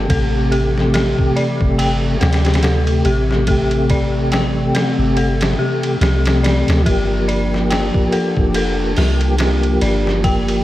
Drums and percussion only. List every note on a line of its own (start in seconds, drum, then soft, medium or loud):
0.10 kick loud
0.10 ride medium
0.52 ride medium
0.78 snare soft
0.94 snare loud
0.94 ride medium
1.18 kick medium
1.37 ride medium
1.61 kick loud
1.79 ride medium
2.21 snare medium
2.21 ride medium
2.33 snare medium
2.33 ride medium
2.45 snare medium
2.45 ride medium
2.54 snare medium
2.54 ride medium
2.63 snare loud
2.63 ride medium
2.87 ride soft
3.05 ride medium
3.31 snare soft
3.47 kick loud
3.47 ride medium
3.71 ride soft
3.90 kick medium
3.90 ride medium
4.32 snare loud
4.32 ride medium
4.75 snare loud
4.75 ride medium
5.17 ride medium
5.41 snare loud
5.41 ride medium
5.83 ride medium
6.01 snare loud
6.01 ride medium
6.26 snare loud
6.26 ride medium
6.44 snare loud
6.44 ride medium
6.68 snare loud
6.68 ride medium
6.86 kick loud
6.86 ride medium
7.29 ride medium
7.54 snare soft
7.71 snare loud
7.71 ride medium
7.94 kick medium
8.12 ride medium
8.37 kick loud
8.54 ride medium
8.96 snare medium
8.96 open hi-hat medium
9.21 ride soft
9.38 snare loud
9.38 ride medium
9.63 ride soft
9.81 ride medium
10.07 snare soft
10.24 kick loud
10.24 ride medium
10.48 ride soft